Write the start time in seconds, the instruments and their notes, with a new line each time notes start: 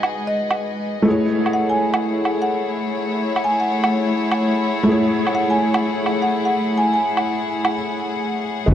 Already playing: felt piano G#3 D#4 F#4 B4, string section G#3 G#4 B4 D#5 F#5
0.03 low woodblock
0.27 marimba D#5
0.51 low woodblock
1.02 felt piano A3 E4, string section A3
1.07 felt piano G#4 C#5
1.21 string section E4
1.33 string section G#4 F#5
1.46 low woodblock
1.53 marimba F#5
1.63 string section C#5
1.70 marimba G#5
1.94 low woodblock
2.25 low woodblock
2.42 marimba F#5
3.36 low woodblock
3.44 marimba G#5
3.60 marimba F#5
3.84 low woodblock
4.32 low woodblock
4.83 felt piano A3 E4
4.89 felt piano G#4 C#5
5.27 low woodblock
5.35 marimba F#5
5.50 marimba G#5
5.74 low woodblock
6.06 low woodblock
6.22 marimba F#5
6.45 marimba F#5
6.78 marimba G#5
6.94 marimba G#5
7.17 low woodblock
7.65 low woodblock
8.66 detuned saw bass G#1, felt piano G#3 D#4 F#4 B4, string section G#3, kick